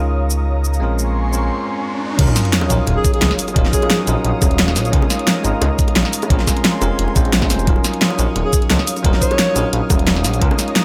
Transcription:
Already playing: analog synth bass C#2, tine electric piano G#3 C#4 D#4 F4 A#4, analog synth pad C#5 F5 A#5 D#6, riser
0.30 cabasa
0.65 cabasa
0.74 cabasa
0.80 analog synth bass A#1, tine electric piano G#3 C4 C#4 F4 A#4, analog synth pad G#5 C6 C#6
0.99 cabasa
1.31 tine electric piano G#3 C4 C#4 F4, cabasa
1.35 tine electric piano A#4
2.17 analog synth bass D#1, tine electric piano F#3 C#4 D#4 F4, analog synth pad C#5 F5 D#6, kick, closed hi-hat, crash, sub drop
2.21 tine electric piano A#4
2.28 high bongo
2.36 snare, closed hi-hat, cabasa
2.45 closed hi-hat
2.53 snare, closed hi-hat
2.61 high bongo
2.68 analog synth bass A#1, tine electric piano F#3 C#4 D#4 F4 A#4, closed hi-hat, cabasa
2.87 analog synth bass D#1, closed hi-hat, high bongo
2.97 alto saxophone G#4
3.04 kick, closed hi-hat, cabasa
3.14 alto saxophone G#4, closed hi-hat
3.22 analog synth bass C#2, snare, closed hi-hat, high bongo
3.31 snare
3.39 open hi-hat, cabasa
3.48 closed hi-hat, high bongo, cabasa
3.54 analog synth bass D#1, tine electric piano F#3 C#4 D#4 F4 A#4, kick, closed hi-hat
3.65 snare
3.73 alto saxophone G#4, kick, closed hi-hat, cabasa
3.82 closed hi-hat, high bongo
3.90 snare, closed hi-hat
4.05 analog synth bass A#1, tine electric piano F#3 C#4 D#4 F4 A#4, closed hi-hat, high bongo, cabasa
4.25 analog synth bass A#1, closed hi-hat
4.42 analog synth bass D#1, kick, closed hi-hat, high bongo, cabasa
4.51 closed hi-hat
4.59 snare, closed hi-hat
4.68 snare, high bongo
4.76 analog synth bass A#1, snare, open hi-hat, cabasa
4.85 closed hi-hat, cabasa
4.91 analog synth bass C#2, tine electric piano G#3 C#4 D#4 F4, analog synth pad A#5, kick, closed hi-hat
4.95 tine electric piano A#4
5.02 high bongo
5.10 snare, closed hi-hat, cabasa
5.19 closed hi-hat
5.27 snare, closed hi-hat, high bongo
5.43 analog synth bass G#1, tine electric piano G#3 C#4 D#4 F4 A#4, closed hi-hat, cabasa
5.62 analog synth bass C#2, closed hi-hat, high bongo
5.79 kick, closed hi-hat, cabasa
5.88 closed hi-hat, high bongo
5.96 analog synth bass A#1, snare, closed hi-hat
6.05 snare
6.13 open hi-hat, cabasa
6.22 closed hi-hat, high bongo, cabasa
6.28 analog synth bass A#1, tine electric piano G#3 C4 C#4 F4, analog synth pad G#5 C6, kick, closed hi-hat
6.32 tine electric piano A#4
6.39 snare
6.47 kick, snare, closed hi-hat, high bongo, cabasa
6.57 closed hi-hat
6.65 snare, closed hi-hat
6.81 analog synth bass F1, tine electric piano G#3 C4 C#4 F4 A#4, closed hi-hat, high bongo, cabasa
6.99 analog synth bass F1, closed hi-hat
7.08 high bongo
7.15 analog synth bass A#1, tine electric piano G#3 C4 C#4 F4 C5, kick, closed hi-hat, cabasa
7.25 closed hi-hat
7.33 snare, closed hi-hat
7.42 kick, snare, high bongo
7.49 analog synth bass F1, tine electric piano G#3 C4 C#4 F4 C5, snare, open hi-hat, cabasa
7.59 closed hi-hat, cabasa
7.65 analog synth bass D#1, tine electric piano F#3 C#4 D#4 F4, analog synth pad C#5 F5 D#6, kick, closed hi-hat
7.69 tine electric piano A#4
7.76 high bongo
7.84 snare, closed hi-hat, cabasa
7.94 closed hi-hat
8.02 snare, closed hi-hat
8.10 high bongo
8.17 analog synth bass A#1, tine electric piano F#3 C#4 D#4 F4 A#4, closed hi-hat, cabasa
8.36 analog synth bass D#1, closed hi-hat, high bongo
8.45 alto saxophone G#4
8.53 kick, closed hi-hat, cabasa
8.62 closed hi-hat
8.70 analog synth bass C#2, snare, closed hi-hat, high bongo
8.79 snare
8.87 open hi-hat, cabasa
8.96 closed hi-hat, high bongo, cabasa
9.02 analog synth bass D#1, tine electric piano F#3 C#4 D#4 F4 A#4, kick, closed hi-hat
9.14 snare
9.22 alto saxophone C#5, kick, closed hi-hat, cabasa
9.31 closed hi-hat, high bongo
9.39 snare, closed hi-hat
9.54 analog synth bass A#1, tine electric piano F#3 C#4 D#4 F4, closed hi-hat, high bongo, cabasa
9.58 tine electric piano A#4
9.73 analog synth bass A#1, closed hi-hat
9.90 analog synth bass D#1, kick, closed hi-hat, high bongo, cabasa
9.99 closed hi-hat
10.07 snare, closed hi-hat
10.16 snare, high bongo
10.24 analog synth bass A#1, snare, open hi-hat, cabasa
10.34 closed hi-hat, cabasa
10.40 analog synth bass C#2, tine electric piano G#3 C#4 D#4 F4 A#4, analog synth pad C#5 A#5 D#6, kick, closed hi-hat
10.51 high bongo
10.59 snare, closed hi-hat, cabasa
10.68 closed hi-hat
10.75 snare, closed hi-hat, high bongo

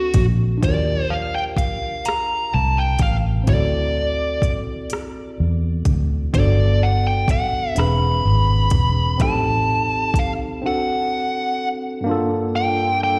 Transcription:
Already playing: fingered electric bass D2, analog synth pad A3 C4 D4, tine electric piano C4 D4 A4 F#5, lead electric guitar F#4
0.14 fingered electric bass A#1, kick, closed hi-hat
0.58 tine electric piano D4 F4
0.63 fingered electric bass D#2, tine electric piano F#4, lead electric guitar D5, kick, closed hi-hat
0.68 tine electric piano G4 A#4
1.10 lead electric guitar F5
1.35 lead electric guitar G5
1.57 lead electric guitar F5, muted fingered electric bass stroke, kick, closed hi-hat
2.05 lead electric guitar A#5, cross-stick, closed hi-hat
2.54 fingered electric bass C2, lead electric guitar A5
2.78 lead electric guitar G5
2.99 fingered electric bass A1, lead electric guitar F5, kick, closed hi-hat
3.44 tine electric piano C4 E4, closed hi-hat
3.48 fingered electric bass D2, tine electric piano F#4, lead electric guitar D5, kick
3.54 tine electric piano A4
4.42 muted fingered electric bass stroke, kick, closed hi-hat
4.90 cross-stick, closed hi-hat
5.40 fingered electric bass E2
5.85 fingered electric bass D2, kick, closed hi-hat
6.33 fingered electric bass G1, tine electric piano B3 D4 F#4, lead electric guitar D5, kick, closed hi-hat
6.39 tine electric piano A4
6.83 lead electric guitar F#5
7.07 lead electric guitar G5
7.28 lead electric guitar F#5, muted fingered electric bass stroke, kick, closed hi-hat
7.75 fingered electric bass E1, tine electric piano C4 D4, lead electric guitar B5, closed hi-hat
7.79 tine electric piano G#4 B4, cross-stick
8.25 fingered electric bass G#1
8.70 fingered electric bass E1, kick, closed hi-hat
9.18 fingered electric bass A1, tine electric piano C4 D#4 G4, kick, closed hi-hat
9.22 tine electric piano A4, lead electric guitar A5
10.14 muted fingered electric bass stroke, kick, closed hi-hat
10.19 lead electric guitar F5
10.62 tine electric piano C4 D4
10.66 tine electric piano F#4 A4, lead electric guitar F#5
12.01 tine electric piano G2 A#3
12.05 analog synth pad G3 A#3 D4 F4 A4, tine electric piano D4 F4
12.11 tine electric piano A4
12.56 lead electric guitar G5
13.03 lead electric guitar G5

